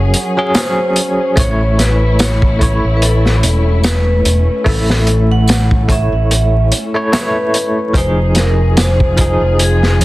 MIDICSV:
0, 0, Header, 1, 7, 480
1, 0, Start_track
1, 0, Tempo, 821918
1, 801, Time_signature, 4, 2, 24, 8
1, 5868, End_track
2, 0, Start_track
2, 0, Title_t, "Vibraphone"
2, 0, Program_c, 0, 11
2, 0, Note_on_c, 0, 78, 107
2, 303, Note_off_c, 0, 78, 0
2, 331, Note_on_c, 0, 72, 92
2, 815, Note_on_c, 0, 73, 99
2, 820, Note_off_c, 0, 72, 0
2, 1050, Note_on_c, 0, 71, 81
2, 1055, Note_off_c, 0, 73, 0
2, 1293, Note_off_c, 0, 71, 0
2, 1296, Note_on_c, 0, 73, 97
2, 1733, Note_on_c, 0, 71, 70
2, 1745, Note_off_c, 0, 73, 0
2, 1765, Note_off_c, 0, 71, 0
2, 1768, Note_on_c, 0, 69, 88
2, 2249, Note_on_c, 0, 71, 90
2, 2259, Note_off_c, 0, 69, 0
2, 2702, Note_off_c, 0, 71, 0
2, 2728, Note_on_c, 0, 69, 90
2, 3104, Note_on_c, 0, 78, 95
2, 3108, Note_off_c, 0, 69, 0
2, 3451, Note_on_c, 0, 76, 91
2, 3457, Note_off_c, 0, 78, 0
2, 3903, Note_off_c, 0, 76, 0
2, 4179, Note_on_c, 0, 71, 90
2, 4656, Note_on_c, 0, 72, 101
2, 4664, Note_off_c, 0, 71, 0
2, 4891, Note_on_c, 0, 70, 90
2, 4895, Note_off_c, 0, 72, 0
2, 5133, Note_off_c, 0, 70, 0
2, 5136, Note_on_c, 0, 72, 96
2, 5617, Note_on_c, 0, 68, 92
2, 5623, Note_off_c, 0, 72, 0
2, 5856, Note_off_c, 0, 68, 0
2, 5868, End_track
3, 0, Start_track
3, 0, Title_t, "Synth drone"
3, 0, Program_c, 1, 95
3, 4640, Note_on_c, 1, 65, 86
3, 5868, Note_off_c, 1, 65, 0
3, 5868, End_track
4, 0, Start_track
4, 0, Title_t, "Tine electric piano"
4, 0, Program_c, 2, 4
4, 0, Control_c, 2, 64, 127
4, 0, Note_on_c, 2, 54, 75
4, 0, Note_on_c, 2, 61, 69
4, 0, Note_on_c, 2, 68, 81
4, 0, Note_on_c, 2, 70, 105
4, 185, Note_off_c, 2, 54, 0
4, 190, Note_off_c, 2, 61, 0
4, 196, Note_off_c, 2, 68, 0
4, 216, Note_on_c, 2, 54, 96
4, 222, Note_on_c, 2, 61, 91
4, 226, Note_on_c, 2, 68, 110
4, 297, Note_off_c, 2, 54, 0
4, 299, Note_off_c, 2, 61, 0
4, 301, Note_off_c, 2, 68, 0
4, 320, Note_on_c, 2, 54, 92
4, 326, Note_on_c, 2, 61, 83
4, 331, Note_on_c, 2, 68, 105
4, 775, Note_off_c, 2, 54, 0
4, 778, Note_off_c, 2, 61, 0
4, 780, Note_off_c, 2, 68, 0
4, 792, Note_on_c, 2, 57, 94
4, 804, Note_on_c, 2, 64, 80
4, 810, Note_off_c, 2, 70, 0
4, 810, Control_c, 2, 64, 0
4, 814, Note_on_c, 2, 73, 103
4, 894, Control_c, 2, 64, 127
4, 1491, Note_off_c, 2, 57, 0
4, 1497, Note_off_c, 2, 64, 0
4, 1502, Note_off_c, 2, 73, 0
4, 1513, Note_on_c, 2, 57, 84
4, 1525, Note_on_c, 2, 64, 75
4, 1534, Note_on_c, 2, 73, 89
4, 2691, Note_off_c, 2, 57, 0
4, 2697, Note_off_c, 2, 64, 0
4, 2702, Note_off_c, 2, 73, 0
4, 2711, Note_on_c, 2, 57, 92
4, 2722, Note_on_c, 2, 64, 82
4, 2735, Note_on_c, 2, 76, 98
4, 3410, Note_off_c, 2, 57, 0
4, 3416, Note_off_c, 2, 64, 0
4, 3422, Note_off_c, 2, 76, 0
4, 3434, Note_on_c, 2, 57, 72
4, 3444, Note_on_c, 2, 64, 67
4, 3455, Note_on_c, 2, 73, 81
4, 4024, Note_off_c, 2, 57, 0
4, 4029, Note_off_c, 2, 64, 0
4, 4034, Note_off_c, 2, 73, 0
4, 4055, Note_on_c, 2, 57, 94
4, 4060, Note_on_c, 2, 64, 84
4, 4066, Note_on_c, 2, 73, 108
4, 4136, Note_off_c, 2, 57, 0
4, 4139, Note_off_c, 2, 64, 0
4, 4142, Note_off_c, 2, 73, 0
4, 4161, Note_on_c, 2, 57, 93
4, 4168, Note_on_c, 2, 64, 86
4, 4173, Note_on_c, 2, 73, 100
4, 4615, Note_off_c, 2, 57, 0
4, 4619, Note_off_c, 2, 64, 0
4, 4622, Note_off_c, 2, 73, 0
4, 4633, Note_on_c, 2, 53, 92
4, 4644, Note_on_c, 2, 63, 88
4, 4649, Control_c, 2, 64, 0
4, 4655, Note_on_c, 2, 68, 102
4, 4743, Control_c, 2, 64, 127
4, 5331, Note_off_c, 2, 53, 0
4, 5337, Note_off_c, 2, 63, 0
4, 5343, Note_off_c, 2, 68, 0
4, 5354, Note_on_c, 2, 53, 81
4, 5365, Note_on_c, 2, 63, 71
4, 5377, Note_on_c, 2, 68, 96
4, 5868, Note_off_c, 2, 53, 0
4, 5868, Note_off_c, 2, 63, 0
4, 5868, Note_off_c, 2, 68, 0
4, 5868, End_track
5, 0, Start_track
5, 0, Title_t, "String section"
5, 0, Program_c, 3, 48
5, 0, Note_on_c, 3, 54, 74
5, 0, Note_on_c, 3, 61, 67
5, 0, Note_on_c, 3, 68, 77
5, 779, Note_off_c, 3, 54, 0
5, 779, Note_off_c, 3, 68, 0
5, 798, Note_on_c, 3, 57, 77
5, 799, Note_on_c, 3, 64, 87
5, 2701, Note_off_c, 3, 64, 0
5, 4616, Note_off_c, 3, 57, 0
5, 4620, Note_off_c, 3, 61, 0
5, 4639, Note_on_c, 3, 53, 74
5, 4640, Note_on_c, 3, 68, 81
5, 5868, Note_off_c, 3, 53, 0
5, 5868, Note_off_c, 3, 68, 0
5, 5868, End_track
6, 0, Start_track
6, 0, Title_t, "Fingered electric bass"
6, 0, Program_c, 4, 33
6, 0, Note_on_c, 4, 30, 83
6, 64, Note_off_c, 4, 30, 0
6, 802, Note_on_c, 4, 33, 96
6, 1629, Note_off_c, 4, 33, 0
6, 1660, Note_on_c, 4, 33, 87
6, 1983, Note_off_c, 4, 33, 0
6, 2006, Note_on_c, 4, 28, 88
6, 2463, Note_off_c, 4, 28, 0
6, 2485, Note_on_c, 4, 28, 76
6, 2600, Note_off_c, 4, 28, 0
6, 2723, Note_on_c, 4, 33, 101
6, 3549, Note_off_c, 4, 33, 0
6, 3577, Note_on_c, 4, 33, 83
6, 3902, Note_off_c, 4, 33, 0
6, 4641, Note_on_c, 4, 29, 94
6, 5468, Note_off_c, 4, 29, 0
6, 5497, Note_on_c, 4, 29, 77
6, 5822, Note_off_c, 4, 29, 0
6, 5842, Note_on_c, 4, 41, 81
6, 5868, Note_off_c, 4, 41, 0
6, 5868, End_track
7, 0, Start_track
7, 0, Title_t, "Drums"
7, 80, Note_on_c, 9, 42, 62
7, 139, Note_off_c, 9, 42, 0
7, 318, Note_on_c, 9, 54, 84
7, 320, Note_on_c, 9, 42, 92
7, 322, Note_on_c, 9, 38, 120
7, 377, Note_off_c, 9, 54, 0
7, 378, Note_off_c, 9, 42, 0
7, 380, Note_off_c, 9, 38, 0
7, 560, Note_on_c, 9, 42, 64
7, 618, Note_off_c, 9, 42, 0
7, 799, Note_on_c, 9, 42, 94
7, 800, Note_on_c, 9, 36, 114
7, 858, Note_off_c, 9, 42, 0
7, 859, Note_off_c, 9, 36, 0
7, 1046, Note_on_c, 9, 38, 43
7, 1046, Note_on_c, 9, 42, 63
7, 1104, Note_off_c, 9, 42, 0
7, 1105, Note_off_c, 9, 38, 0
7, 1279, Note_on_c, 9, 54, 81
7, 1282, Note_on_c, 9, 42, 84
7, 1287, Note_on_c, 9, 38, 113
7, 1338, Note_off_c, 9, 54, 0
7, 1340, Note_off_c, 9, 42, 0
7, 1345, Note_off_c, 9, 38, 0
7, 1414, Note_on_c, 9, 36, 84
7, 1473, Note_off_c, 9, 36, 0
7, 1524, Note_on_c, 9, 36, 87
7, 1526, Note_on_c, 9, 42, 64
7, 1583, Note_off_c, 9, 36, 0
7, 1584, Note_off_c, 9, 42, 0
7, 1763, Note_on_c, 9, 42, 74
7, 1822, Note_off_c, 9, 42, 0
7, 1902, Note_on_c, 9, 38, 35
7, 1960, Note_off_c, 9, 38, 0
7, 2004, Note_on_c, 9, 42, 62
7, 2063, Note_off_c, 9, 42, 0
7, 2240, Note_on_c, 9, 54, 83
7, 2245, Note_on_c, 9, 38, 122
7, 2245, Note_on_c, 9, 42, 89
7, 2299, Note_off_c, 9, 54, 0
7, 2303, Note_off_c, 9, 42, 0
7, 2304, Note_off_c, 9, 38, 0
7, 2483, Note_on_c, 9, 42, 69
7, 2542, Note_off_c, 9, 42, 0
7, 2721, Note_on_c, 9, 36, 93
7, 2724, Note_on_c, 9, 46, 72
7, 2779, Note_off_c, 9, 36, 0
7, 2782, Note_off_c, 9, 46, 0
7, 2860, Note_on_c, 9, 38, 51
7, 2919, Note_off_c, 9, 38, 0
7, 2960, Note_on_c, 9, 42, 74
7, 3019, Note_off_c, 9, 42, 0
7, 3198, Note_on_c, 9, 54, 85
7, 3206, Note_on_c, 9, 42, 84
7, 3211, Note_on_c, 9, 38, 119
7, 3256, Note_off_c, 9, 54, 0
7, 3264, Note_off_c, 9, 42, 0
7, 3269, Note_off_c, 9, 38, 0
7, 3336, Note_on_c, 9, 36, 89
7, 3394, Note_off_c, 9, 36, 0
7, 3438, Note_on_c, 9, 36, 94
7, 3443, Note_on_c, 9, 42, 62
7, 3496, Note_off_c, 9, 36, 0
7, 3501, Note_off_c, 9, 42, 0
7, 3685, Note_on_c, 9, 42, 77
7, 3743, Note_off_c, 9, 42, 0
7, 3922, Note_on_c, 9, 42, 69
7, 3981, Note_off_c, 9, 42, 0
7, 4164, Note_on_c, 9, 54, 87
7, 4165, Note_on_c, 9, 38, 107
7, 4165, Note_on_c, 9, 42, 90
7, 4223, Note_off_c, 9, 54, 0
7, 4224, Note_off_c, 9, 38, 0
7, 4224, Note_off_c, 9, 42, 0
7, 4404, Note_on_c, 9, 42, 70
7, 4462, Note_off_c, 9, 42, 0
7, 4638, Note_on_c, 9, 36, 99
7, 4643, Note_on_c, 9, 42, 85
7, 4697, Note_off_c, 9, 36, 0
7, 4702, Note_off_c, 9, 42, 0
7, 4875, Note_on_c, 9, 42, 67
7, 4884, Note_on_c, 9, 38, 43
7, 4933, Note_off_c, 9, 42, 0
7, 4942, Note_off_c, 9, 38, 0
7, 5121, Note_on_c, 9, 42, 91
7, 5123, Note_on_c, 9, 54, 76
7, 5125, Note_on_c, 9, 38, 119
7, 5180, Note_off_c, 9, 42, 0
7, 5181, Note_off_c, 9, 54, 0
7, 5183, Note_off_c, 9, 38, 0
7, 5258, Note_on_c, 9, 36, 91
7, 5316, Note_off_c, 9, 36, 0
7, 5358, Note_on_c, 9, 42, 74
7, 5364, Note_on_c, 9, 36, 91
7, 5416, Note_off_c, 9, 42, 0
7, 5423, Note_off_c, 9, 36, 0
7, 5603, Note_on_c, 9, 42, 81
7, 5661, Note_off_c, 9, 42, 0
7, 5741, Note_on_c, 9, 38, 36
7, 5799, Note_off_c, 9, 38, 0
7, 5845, Note_on_c, 9, 42, 63
7, 5868, Note_off_c, 9, 42, 0
7, 5868, End_track
0, 0, End_of_file